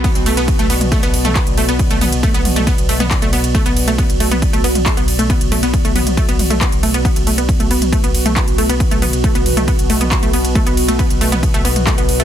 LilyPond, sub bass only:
\new Staff \with { instrumentName = "Sub bass" } { \clef bass \time 4/4 \key b \minor \tempo 4 = 137 r16 b,,16 b,,16 b,,16 r16 b,,16 b,,16 b,,16 r16 b,,16 b,,16 b,,16 r16 b,,16 b,,16 b,,16 | r16 b,,16 b,,16 b,,16 r16 b,,16 b,,16 b,,16 r16 b,,16 b,,16 b,,16 r16 b,,16 b,,16 b,,16 | r16 b,,16 b,,16 b,,16 r16 b,,16 b,,16 b,,16 r16 b,,16 b,,16 b,,16 r16 b,,16 b,,16 b,,16 | r16 b,,16 b,,16 b,,16 r16 b,,16 b,,16 b,,16 r16 b,,16 b,,16 b,,16 r16 b,,16 b,,16 b,,16 |
r16 b,,16 b,,16 b,,16 r16 b,,16 b,,16 b,,16 r16 b,,16 b,,16 b,,16 r16 b,,16 b,,16 b,,16 | r16 b,,16 b,,16 b,,16 r16 b,,16 b,,16 b,,16 r16 b,,16 b,,16 b,,16 r16 b,,16 b,,16 b,,16 | r16 b,,16 b,,16 b,,16 r16 b,,16 b,,16 b,,16 r16 b,,16 b,,16 b,,16 r16 b,,16 b,,16 b,,16 | }